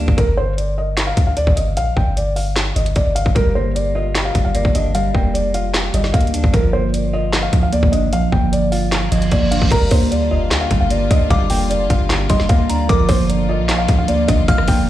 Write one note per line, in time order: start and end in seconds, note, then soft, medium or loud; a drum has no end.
0.00 0.18 G3 medium
0.00 0.18 A#3 medium
0.00 0.18 D4 medium
0.00 0.18 G4 loud
0.00 0.15 F5 medium
0.08 0.17 G1 loud
0.08 kick loud
0.17 1.13 G1 loud
0.17 0.33 A#4 loud
0.17 kick loud
0.17 closed hi-hat medium
0.37 0.53 C5 medium
0.58 0.73 D5 medium
0.58 closed hi-hat medium
0.78 1.06 D#5 medium
0.97 snare loud
0.97 clap medium
0.97 closed hi-hat medium
1.07 1.22 F5 medium
1.17 1.46 D2 loud
1.17 kick medium
1.17 closed hi-hat medium
1.27 1.35 F5 medium
1.37 1.52 D5 medium
1.37 closed hi-hat medium
1.47 1.78 G1 loud
1.47 kick medium
1.56 1.72 D#5 medium
1.56 closed hi-hat medium
1.77 1.96 A#1 medium
1.77 1.92 F5 loud
1.77 closed hi-hat medium
1.96 2.73 G1 loud
1.96 2.12 G5 medium
1.96 kick medium
2.17 2.32 D5 medium
2.17 closed hi-hat medium
2.36 2.74 F5 medium
2.36 open hi-hat medium
2.56 snare loud
2.56 clap loud
2.56 closed hi-hat medium
2.76 2.95 G1 loud
2.76 2.91 D#5 medium
2.76 closed hi-hat medium
2.86 closed hi-hat medium
2.96 3.25 G1 loud
2.96 3.11 D5 medium
2.96 kick medium
2.96 closed hi-hat medium
3.15 3.31 F5 medium
3.15 closed hi-hat medium
3.26 3.35 G1 loud
3.26 kick loud
3.35 4.31 G1 loud
3.35 4.34 G3 medium
3.35 3.50 A#4 loud
3.35 kick loud
3.35 closed hi-hat medium
3.55 4.54 A#3 medium
3.55 3.71 C5 medium
3.75 3.90 D5 medium
3.75 closed hi-hat medium
3.95 4.74 F4 medium
3.95 4.23 D#5 medium
4.15 5.14 G4 medium
4.15 snare loud
4.15 clap medium
4.15 closed hi-hat medium
4.25 4.40 F5 medium
4.35 4.64 G1 loud
4.35 4.94 G3 medium
4.35 kick medium
4.35 closed hi-hat medium
4.45 4.52 F5 medium
4.55 5.13 A#3 medium
4.55 4.70 D5 medium
4.55 closed hi-hat medium
4.65 5.13 G1 loud
4.65 kick loud
4.75 5.54 D4 medium
4.75 4.90 D#5 medium
4.75 closed hi-hat medium
4.95 5.93 G3 loud
4.95 5.10 F5 medium
4.95 closed hi-hat medium
5.14 5.91 F1 loud
5.14 6.13 A#3 medium
5.14 5.30 G5 medium
5.14 kick loud
5.34 5.49 D5 medium
5.34 closed hi-hat medium
5.54 6.33 F4 medium
5.54 5.92 F5 medium
5.54 closed hi-hat medium
5.74 6.54 G4 loud
5.74 snare loud
5.74 clap loud
5.74 closed hi-hat medium
5.94 6.13 G1 loud
5.94 6.53 G3 medium
5.94 6.09 D#5 medium
5.94 closed hi-hat medium
6.04 snare medium
6.13 6.42 D2 loud
6.13 6.54 A#3 medium
6.13 6.51 F5 medium
6.13 kick medium
6.13 closed hi-hat medium
6.21 closed hi-hat medium
6.27 closed hi-hat soft
6.34 6.54 D4 medium
6.34 closed hi-hat loud
6.44 6.53 G1 loud
6.44 kick loud
6.53 7.49 G1 loud
6.53 7.52 F3 medium
6.53 6.69 A#4 loud
6.53 kick loud
6.53 closed hi-hat medium
6.73 7.72 A#3 medium
6.73 6.88 C5 medium
6.93 7.09 D5 medium
6.93 closed hi-hat medium
7.13 8.13 F4 medium
7.13 7.41 D#5 medium
7.33 8.32 F5 loud
7.33 snare loud
7.33 clap medium
7.33 closed hi-hat medium
7.43 7.58 F5 medium
7.53 7.82 D2 loud
7.53 8.11 F3 medium
7.53 kick medium
7.53 closed hi-hat medium
7.63 7.70 F5 medium
7.73 8.31 A#3 medium
7.73 7.88 D5 loud
7.73 closed hi-hat medium
7.83 8.14 G1 loud
7.83 kick loud
7.92 8.92 D4 medium
7.92 8.07 D#5 medium
7.92 closed hi-hat medium
8.13 8.31 A#1 loud
8.13 9.11 F3 medium
8.13 8.28 F5 loud
8.13 closed hi-hat medium
8.32 9.09 G1 loud
8.32 9.31 A#3 medium
8.32 8.47 G5 medium
8.32 kick medium
8.52 8.68 D5 medium
8.52 closed hi-hat medium
8.72 9.71 F4 medium
8.72 9.09 F5 medium
8.72 open hi-hat medium
8.92 9.71 F5 loud
8.92 snare loud
8.92 clap medium
8.92 closed hi-hat medium
8.92 reverse cymbal medium
9.12 9.31 G1 loud
9.12 9.71 F3 medium
9.12 9.27 D#5 medium
9.12 closed hi-hat medium
9.22 closed hi-hat soft
9.31 9.60 G1 loud
9.31 9.72 A#3 medium
9.31 9.47 D5 medium
9.31 kick medium
9.31 closed hi-hat medium
9.51 9.71 D4 medium
9.51 9.67 F5 medium
9.51 closed hi-hat medium
9.62 9.71 G1 loud
9.62 kick loud
9.71 9.91 G1 loud
9.71 14.89 D3 medium
9.71 10.70 G3 medium
9.71 12.86 G3 medium
9.71 14.89 A#3 medium
9.71 12.86 F4 medium
9.71 9.86 A#4 loud
9.71 10.09 A#5 loud
9.71 kick loud
9.71 closed hi-hat medium
9.71 crash loud
9.91 10.33 D2 loud
9.91 10.90 A#3 medium
9.91 10.06 C5 medium
9.91 kick loud
9.91 open hi-hat medium
10.11 10.26 D5 medium
10.11 closed hi-hat medium
10.31 10.52 F1 loud
10.31 11.10 F4 medium
10.31 10.59 D#5 medium
10.51 10.70 D2 loud
10.51 11.50 G4 loud
10.51 snare loud
10.51 clap loud
10.51 closed hi-hat medium
10.61 10.76 F5 medium
10.71 11.09 G1 loud
10.71 11.29 G3 medium
10.71 kick medium
10.71 closed hi-hat medium
10.81 10.88 F5 medium
10.90 11.49 A#3 medium
10.90 11.06 D5 medium
10.90 closed hi-hat medium
11.10 11.30 D2 loud
11.10 12.10 D4 medium
11.10 11.26 D#5 medium
11.10 kick loud
11.10 closed hi-hat medium
11.30 11.50 G1 loud
11.30 12.29 G3 loud
11.30 11.46 F5 loud
11.30 11.68 D6 loud
11.30 kick loud
11.30 closed hi-hat medium
11.50 11.88 F1 loud
11.50 12.48 A#3 medium
11.50 11.65 G5 medium
11.50 open hi-hat medium
11.70 11.85 D5 medium
11.70 closed hi-hat medium
11.90 12.28 G1 loud
11.90 12.89 F4 medium
11.90 12.27 F5 medium
11.90 kick medium
11.90 closed hi-hat medium
12.10 12.89 G4 loud
12.10 snare loud
12.10 clap medium
12.10 closed hi-hat medium
12.30 12.49 G1 loud
12.30 12.89 G3 medium
12.30 12.45 D#5 medium
12.30 12.67 C6 medium
12.30 kick medium
12.30 closed hi-hat medium
12.40 snare medium
12.49 12.88 D2 loud
12.49 12.89 A#3 medium
12.49 12.87 F5 medium
12.49 kick medium
12.49 closed hi-hat medium
12.69 12.89 D4 medium
12.69 12.88 A#5 medium
12.69 closed hi-hat medium
12.89 13.08 G1 loud
12.89 13.87 F3 loud
12.89 14.89 F3 medium
12.89 14.89 F4 medium
12.89 13.04 A#4 loud
12.89 13.27 D6 loud
12.89 kick loud
12.89 closed hi-hat medium
13.09 13.60 G1 loud
13.09 14.07 A#3 medium
13.09 13.24 C5 medium
13.09 kick loud
13.09 open hi-hat medium
13.29 13.44 D5 medium
13.29 closed hi-hat medium
13.49 14.48 F4 medium
13.49 13.77 D#5 medium
13.59 13.87 A#1 loud
13.69 14.68 F5 loud
13.69 snare loud
13.69 clap medium
13.69 closed hi-hat medium
13.78 13.94 F5 medium
13.88 14.27 D2 loud
13.88 14.47 F3 medium
13.88 kick medium
13.88 closed hi-hat medium
13.98 14.06 F5 medium
14.08 14.67 A#3 medium
14.08 14.24 D5 medium
14.08 closed hi-hat medium
14.28 14.48 G1 loud
14.28 14.89 D4 medium
14.28 14.43 D#5 medium
14.28 kick loud
14.28 closed hi-hat loud
14.48 14.67 G1 loud
14.48 14.89 F3 medium
14.48 14.64 F5 loud
14.48 14.86 F6 loud
14.48 kick loud
14.48 closed hi-hat medium
14.58 cross-stick loud
14.68 14.89 G1 loud
14.68 14.89 A#3 medium
14.68 14.83 G5 medium
14.68 kick medium
14.68 open hi-hat medium